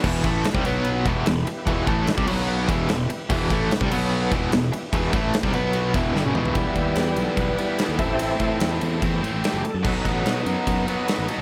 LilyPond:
<<
  \new Staff \with { instrumentName = "Tonewheel organ" } { \time 4/4 \key e \minor \tempo 4 = 147 <e' g' b'>4. <b fis' b'>4 <e' g' b'>4.~ | <e' g' b'>4. <b fis' b'>4 <e' g' b'>4.~ | <e' g' b'>4. <b fis' b'>4 <e' g' b'>4.~ | <e' g' b'>4. <b fis' b'>4 <e' g' b'>4. |
r8 e'8 g'8 a'8 <ais' b'>4 a'8 g'8 | e'2 r4 g'8 <gis' a'>8~ | <gis' a'>4 b8 b8 b8 <ais b>4 r8 | }
  \new Staff \with { instrumentName = "Tonewheel organ" } { \time 4/4 \key e \minor r1 | r1 | r1 | r1 |
<g b e'>2.~ <g b e'>8 <a c' e'>8~ | <a c' e'>4 <a c' e'>8 r2 r8 | <fis b dis'>4. r2 r8 | }
  \new Staff \with { instrumentName = "Distorted electric guitar" } { \clef bass \time 4/4 \key e \minor <e, b, e>8 <a, e a>8 r16 <c g>16 <b, fis b>4 <e, b, e>8 <e, b,>8 r8 | <e, b, e>8 <a, e a>8 r16 <c g>16 <b, fis b>4 <e, b, e>8 <e, b,>8 r8 | <e, b, e>8 <a, e a>8 r16 <c g>16 <b, fis b>4 <e, b, e>8 <e, b,>8 r8 | <e, b, e>8 <a, e a>8 r16 <c g>16 <b, fis b>4 <e, b, e>8 <g, d>16 <fis, cis>16 <e, b, e>8 |
<e g b e'>2~ <e g b e'>8 <e g b e'>8 <e g b e'>8 <a, e a c' e'>8~ | <a, e a c' e'>2 <a, e a c' e'>8 <a, e a c' e'>4 r8 | <b, fis b dis'>2~ <b, fis b dis'>8 <b, fis b dis'>8 <b, fis b dis'>4 | }
  \new Staff \with { instrumentName = "Overdriven electric guitar" } { \clef bass \time 4/4 \key e \minor <e, b, e>8 <a, e a>8 r16 <c g>16 <b, fis b>4 <e, b, e>8 <e, b,>8 r8 | <e, b, e>8 <a, e a>8 r16 <c g>16 <b, fis b>4 <e, b, e>8 <e, b,>8 r8 | <e, b, e>8 <a, e a>8 r16 <c g>16 <b, fis b>4 <e, b, e>8 <e, b,>8 r8 | <e, b, e>8 <a, e a>8 r16 <c g>16 <b, fis b>4 <e, b, e>8 <g, d>16 <fis, cis>16 <e, b, e>8 |
r1 | r1 | r1 | }
  \new Staff \with { instrumentName = "Picked electric bass" } { \clef bass \time 4/4 \key e \minor e,,8 a,,8 r16 c,16 b,,4 e,,8 e,,8 r8 | e,,8 a,,8 r16 c,16 b,,4 e,,8 e,,8 r8 | e,,8 a,,8 r16 c,16 b,,4 e,,8 e,,8 r8 | e,,8 a,,8 r16 c,16 b,,4 e,,8 g,,16 fis,,16 e,,8 |
e,,16 r16 dis,8 e,8 b,,16 r16 b,,8 r8. dis,16 a,,8~ | a,,8 a,8 e,8 e,8 e,8 a,16 a,,16 r16 fis,,16 r16 fis,16 | b,,16 r16 a,,8 b,8 fis,16 r16 fis,8 r8. a,,16 r16 c,16 | }
  \new DrumStaff \with { instrumentName = "Drums" } \drummode { \time 4/4 <cymc bd>8 <bd cymr>8 <cymr sn>16 bd16 cymr8 cymr8 <bd cymr>8 <cymr sn>8 cymr8 | <bd cymr>8 <bd cymr>8 <cymr sn>16 bd16 cymc8 r8 <bd cymr>8 <cymr sn>8 cymr8 | <cymc bd>8 <bd cymr>8 <cymr sn>16 bd16 cymc8 r8 <bd cymr>8 <cymr sn>8 cymr8 | <bd cymr>8 <bd cymr>8 <cymr sn>16 bd16 cymr8 cymr8 <bd cymr>8 sn16 tommh16 toml16 tomfh16 |
<bd cymr>8 <bd cymr>8 <cymr sn>8 cymr8 <bd cymr>8 cymr8 <cymr sn>8 <bd cymr>8 | cymr8 <bd cymr>8 <cymr sn>8 cymr8 <bd cymr>8 cymr8 <cymr sn>8 cymr8 | <cymc bd>8 <bd cymr>8 <cymr sn>8 cymr8 <bd cymr>8 cymr8 <cymr sn>8 cymr8 | }
>>